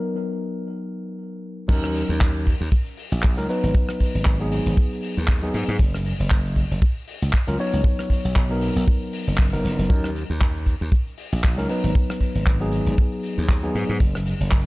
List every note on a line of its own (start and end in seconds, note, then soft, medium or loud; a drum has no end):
0.00 1.66 F#3 medium
0.00 1.66 B3 medium
0.00 1.67 D#4 medium
0.00 1.67 A#4 medium
1.68 2.02 D#2 loud
1.68 2.46 F#3 loud
1.68 2.46 C#4 medium
1.68 2.46 D#4 medium
1.68 2.47 A#4 loud
1.68 kick loud
1.68 crash loud
1.68 shaker medium
1.84 cross-stick medium
1.84 shaker soft
1.95 open hi-hat loud
1.95 shaker medium
2.09 2.53 D#2 medium
2.09 shaker medium
2.21 kick loud
2.21 clap loud
2.21 shaker medium
2.36 shaker soft
2.47 kick medium
2.47 open hi-hat loud
2.47 shaker medium
2.61 2.68 D#2 medium
2.61 shaker medium
2.72 kick loud
2.72 shaker medium
2.86 shaker soft
2.97 open hi-hat loud
2.97 shaker medium
3.12 3.38 A#1 loud
3.12 shaker medium
3.22 kick loud
3.22 clap loud
3.22 shaker medium
3.37 3.45 C#2 medium
3.37 3.46 F#3 medium
3.37 3.46 C#4 medium
3.37 3.46 D#4 medium
3.37 3.46 A#4 loud
3.37 shaker soft
3.48 4.36 F#3 medium
3.48 4.37 B3 medium
3.48 4.37 D#4 medium
3.48 4.37 B4 medium
3.48 open hi-hat loud
3.48 shaker medium
3.63 3.71 G#1 loud
3.63 shaker soft
3.75 kick loud
3.75 shaker medium
3.89 cross-stick medium
3.89 shaker soft
4.00 kick medium
4.00 open hi-hat loud
4.00 shaker medium
4.15 4.59 G#1 medium
4.15 shaker medium
4.25 kick loud
4.25 clap loud
4.25 shaker medium
4.39 5.39 F#3 medium
4.39 5.39 B3 medium
4.39 5.39 D#4 medium
4.39 5.40 G#4 medium
4.39 shaker soft
4.52 open hi-hat loud
4.52 shaker medium
4.66 4.74 G#1 medium
4.66 shaker soft
4.77 kick loud
4.77 shaker medium
4.92 shaker soft
5.02 open hi-hat loud
5.02 shaker medium
5.17 5.48 D#2 medium
5.17 shaker medium
5.28 kick loud
5.28 clap loud
5.28 shaker medium
5.42 5.78 F#3 medium
5.42 5.78 B3 medium
5.42 5.78 D#4 medium
5.42 5.79 G#4 medium
5.42 shaker soft
5.54 5.64 G#2 medium
5.54 open hi-hat loud
5.54 shaker medium
5.68 5.76 G#2 loud
5.68 shaker medium
5.79 6.12 F#1 loud
5.79 kick loud
5.79 shaker medium
5.94 cross-stick medium
5.94 shaker soft
6.05 open hi-hat loud
6.05 shaker medium
6.19 6.64 F#1 medium
6.19 shaker soft
6.30 kick loud
6.30 clap loud
6.30 shaker medium
6.46 shaker soft
6.56 kick medium
6.56 open hi-hat loud
6.56 shaker medium
6.71 6.79 F#1 medium
6.71 shaker soft
6.82 kick loud
6.82 shaker medium
6.97 shaker soft
7.08 open hi-hat loud
7.08 shaker medium
7.22 7.30 C#2 medium
7.22 shaker soft
7.33 kick loud
7.33 clap loud
7.33 shaker medium
7.47 7.56 C#2 loud
7.47 7.56 F#3 medium
7.47 7.56 C#4 medium
7.47 7.56 F4 medium
7.47 7.57 A#4 loud
7.47 shaker soft
7.58 8.46 F#3 medium
7.58 8.47 B3 medium
7.58 8.47 D#4 medium
7.58 8.48 C#5 medium
7.58 open hi-hat loud
7.58 shaker medium
7.73 7.81 C#2 loud
7.73 shaker soft
7.84 kick loud
7.84 shaker medium
7.99 cross-stick medium
7.99 shaker soft
8.10 kick medium
8.10 open hi-hat loud
8.10 shaker medium
8.25 8.69 B1 medium
8.25 shaker soft
8.36 kick loud
8.36 clap loud
8.36 shaker medium
8.49 9.49 F#3 medium
8.49 9.49 B3 medium
8.49 9.50 D#4 medium
8.49 9.50 A#4 medium
8.49 shaker soft
8.61 open hi-hat loud
8.61 shaker medium
8.76 8.84 B1 medium
8.76 shaker medium
8.88 kick loud
8.88 shaker medium
9.02 shaker soft
9.13 open hi-hat loud
9.13 shaker medium
9.27 9.52 F#1 medium
9.27 shaker soft
9.37 kick loud
9.37 clap loud
9.37 shaker medium
9.52 9.61 F#1 medium
9.52 9.88 F#3 medium
9.52 9.88 B3 medium
9.52 9.89 D#4 medium
9.52 9.89 A#4 medium
9.52 shaker soft
9.64 9.74 F#1 medium
9.64 open hi-hat loud
9.64 shaker medium
9.79 9.86 F#1 medium
9.79 shaker medium
9.89 10.23 D#2 loud
9.89 10.09 F#3 medium
9.89 10.09 C#4 medium
9.89 10.09 D#4 medium
9.89 10.09 A#4 medium
9.89 kick loud
9.89 shaker medium
10.04 cross-stick medium
10.04 shaker soft
10.15 open hi-hat loud
10.15 shaker medium
10.30 10.74 D#2 medium
10.30 shaker medium
10.41 kick loud
10.41 clap loud
10.41 shaker medium
10.57 shaker soft
10.66 kick medium
10.66 open hi-hat loud
10.66 shaker medium
10.81 10.89 D#2 medium
10.81 shaker medium
10.92 kick loud
10.92 shaker medium
11.08 shaker soft
11.18 open hi-hat loud
11.18 shaker medium
11.32 11.58 A#1 medium
11.32 shaker soft
11.44 kick loud
11.44 clap loud
11.44 shaker medium
11.57 11.66 C#2 medium
11.57 11.66 F#3 medium
11.57 11.67 C#4 medium
11.57 11.67 D#4 medium
11.57 11.67 A#4 loud
11.57 shaker soft
11.69 12.57 F#3 medium
11.69 12.57 B3 medium
11.69 12.58 D#4 medium
11.69 12.58 B4 medium
11.69 open hi-hat loud
11.69 shaker medium
11.84 11.91 G#1 loud
11.84 shaker medium
11.95 kick loud
11.95 shaker medium
12.10 cross-stick medium
12.10 shaker soft
12.21 kick medium
12.21 open hi-hat loud
12.21 shaker medium
12.35 12.79 G#1 medium
12.35 shaker medium
12.46 kick loud
12.46 clap loud
12.46 shaker medium
12.60 13.59 F#3 medium
12.60 13.60 B3 medium
12.60 13.60 D#4 medium
12.60 13.60 G#4 medium
12.60 shaker soft
12.72 open hi-hat loud
12.72 shaker medium
12.86 12.94 G#1 medium
12.86 shaker medium
12.98 kick loud
12.98 shaker medium
13.12 shaker soft
13.23 open hi-hat loud
13.23 shaker medium
13.38 13.69 D#2 medium
13.38 shaker soft
13.49 kick loud
13.49 clap loud
13.49 shaker medium
13.63 13.99 F#3 medium
13.63 13.99 B3 medium
13.63 13.99 D#4 medium
13.63 13.99 G#4 medium
13.63 shaker soft
13.75 13.85 G#2 medium
13.75 open hi-hat loud
13.75 shaker medium
13.89 13.97 G#2 loud
13.89 shaker medium
14.00 14.33 F#1 loud
14.00 kick loud
14.00 shaker medium
14.15 cross-stick medium
14.15 shaker soft
14.26 open hi-hat loud
14.26 shaker medium
14.40 14.66 F#1 medium
14.40 shaker medium
14.51 kick loud
14.51 clap loud
14.51 shaker medium